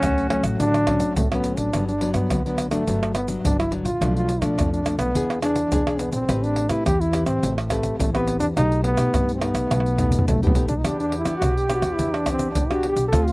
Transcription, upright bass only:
0.03 D2
0.43 A1
0.60 A1
1.00 D3
1.17 D2
1.57 A1
1.74 G1
2.15 G2
2.31 D2
2.71 G1
2.88 G1
3.44 G1
3.85 A#1
4.01 B1
4.41 B2
4.58 F2
4.99 B1
5.15 E2
5.72 E2
6.13 A#1
6.29 A1
6.70 A2
6.86 E2
7.26 A1
7.43 A1
7.99 A1
8.41 E2
8.57 B1
8.97 B2
9.14 G2
9.54 B1
9.71 B1
10.28 B1
10.68 B1
10.85 E2
11.25 E3
11.41 B1
11.82 E2
11.99 E2
12.56 E2
12.96 B1
13.12 D2

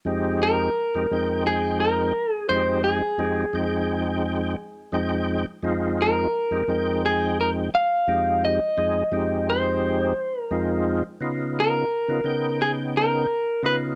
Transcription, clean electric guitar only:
0.43 A#4
1.47 G#4
1.80 A#4
2.34 G#4
2.49 C5
2.84 G#4
6.02 A#4
7.06 G#4
7.41 A#4
7.75 F5
8.45 D#5
9.50 C5
10.40 A#4
11.60 A#4
12.62 G#4
12.97 A#4
13.66 B4

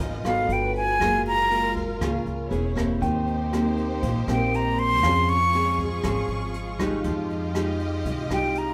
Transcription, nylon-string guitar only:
0.00 G#2
0.25 B3 F#4 A4
1.01 F#3 A#3 F4 G#4
1.50 A#3 F4 G#4
2.01 C#3 A#3 F4 G#4
2.50 B3 C#4 G#4
2.75 A#3 C4 G4
3.01 D#3
3.53 A#3 C4 G4
4.02 A#2
4.28 A#3 C4 G4
5.03 F3 C4 C#4 G#4
5.55 C4 C#4 G#4
6.04 F3 C4 C#4 G#4
6.80 G#3 D#4 G4
7.05 F3
7.55 G#3 D#4 G4
8.06 C3
8.31 G#3 D#4 G4

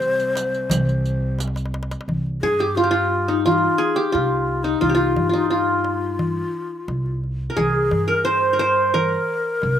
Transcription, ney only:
Already playing: C5
2.42 G#4
2.60 G4
2.76 F4
2.89 F4
3.46 F4
3.52 G4
3.58 F4
3.96 G4
4.12 F4
4.63 D#4
4.82 F4
4.95 F4
5.51 F4
7.57 G#4
8.09 A#4
8.25 C5
8.95 A#4

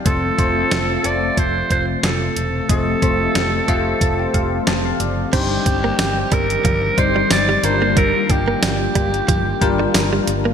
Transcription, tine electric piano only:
0.05 A3 C4 F4 C5
0.38 A3 C4 F4 C5
1.04 A3 C4 F4 A4
2.69 A3 C4 F4 D#5
3.02 A3 C4 F4 C5
3.68 A3 C4 F4 C5 C6
4.01 A5
4.19 G5
4.34 F5
4.67 A5
4.85 F5
5.00 D5
5.33 G3 D4 D#4 C5
6.97 G3 D#4 C5 D5
7.63 G3 D4 F4 A#4
9.61 G3 D4 F4 A#4

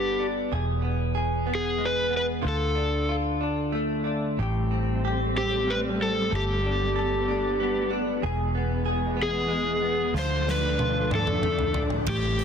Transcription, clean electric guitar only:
Already playing: G3 B3 D4 A4
0.20 D4
0.52 E2 G#4
0.82 B3
1.15 G#4
1.47 B3
1.78 G#3
2.10 B3
2.42 D3 F4
2.75 D4
3.09 F4
3.41 D4
3.72 A3
4.04 D4
4.39 A2 G4
4.71 C4
5.05 G4
5.36 C4
5.68 G3
6.00 C4
6.31 G3 A4
6.63 D4
6.96 A4
7.28 D4
7.60 B3
7.90 D4
8.22 E2 G#4
8.55 B3
8.86 G#4
9.17 B3
9.48 G#3
9.82 B3
10.14 D3 F4
10.46 D4
10.79 F4
11.11 D4
11.43 A3
11.74 D4
12.07 A2
12.40 C4

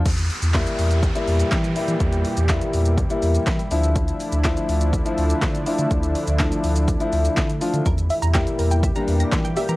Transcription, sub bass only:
0.06 E2
0.42 E2
0.79 E2
1.27 E2
1.52 E3
1.88 E3
2.00 E2
2.37 E2
2.74 E2
3.22 E2
3.47 E3
3.71 D2
4.32 D2
4.69 D2
5.18 D2
5.42 D3
5.79 D3
5.91 D2
6.27 D2
6.64 D2
7.13 D2
7.37 D3
7.74 D3
7.86 E2
8.22 E2
8.59 E2
9.08 E2
9.32 E3
9.69 E3

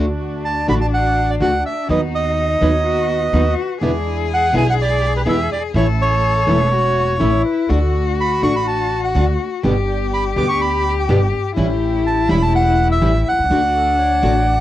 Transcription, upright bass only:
Already playing: D2
0.69 A1
1.41 D2
1.89 D#2
2.61 D#2
3.33 D#2
3.81 E2
4.53 B1
5.26 E2
5.74 A1
6.47 E1
7.21 A1
7.70 D2
8.42 A1
9.15 D2
9.64 G1
10.36 D2
11.09 G1
11.57 A1
12.29 E1
13.02 A1
13.32 B1
13.39 C2
13.44 C#2
13.51 D2
14.23 A1

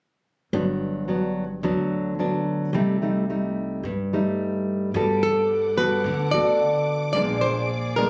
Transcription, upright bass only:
0.53 G1
1.63 D2
2.73 C2
3.83 G2
4.94 G2
6.04 D2
6.32 D2
7.14 A#1

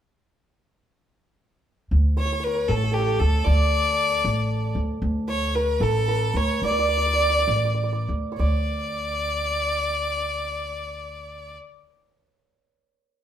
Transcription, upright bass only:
1.91 D2
2.69 A1
3.20 D2
3.46 D2
4.24 A1
4.75 D2
5.02 D2
5.80 A1
6.34 D2
6.62 D2
7.48 A1
8.09 D2
8.39 D2

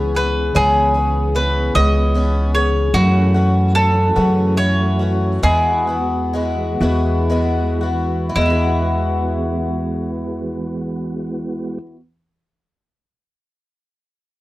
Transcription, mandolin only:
Already playing: C#5
0.16 B4
0.56 G#4
1.36 B4
1.75 D#5
2.55 C#5
2.94 F#4
3.75 A4
4.57 C#5
5.43 G#4
8.36 E4

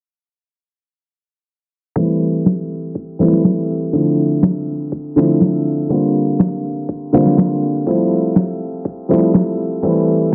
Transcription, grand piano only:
1.96 E3 G3 A3 C4 E4
3.19 E3 G3 A3 C4 E4
3.93 D3 F3 A3 C4 E4
5.16 D3 F3 A3 C4 E4
5.89 D3 G3 A#3 C4 F4
7.13 D3 G3 A#3 C4 F4
7.86 F3 G3 A3 C4 E4
9.09 F3 G3 A3 C4 E4
9.83 E3 G3 A3 C4 E4

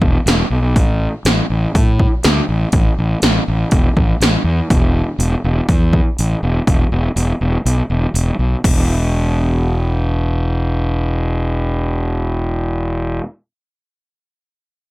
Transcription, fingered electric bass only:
0.01 E1
0.26 E1
0.50 B1
0.76 A1
1.25 A1
1.50 A1
1.75 A2
2.25 D2
2.49 A1
2.73 A1
2.98 A1
3.22 A1
3.48 A1
3.72 E1
3.97 A1
4.20 A1
4.44 E2
4.70 E1
5.18 E1
5.44 E1
5.69 E2
6.19 A1
6.43 E1
6.68 E1
6.92 E1
7.16 E1
7.41 E1
7.65 B1
7.90 E1
8.14 E1
8.39 B1
8.64 E1

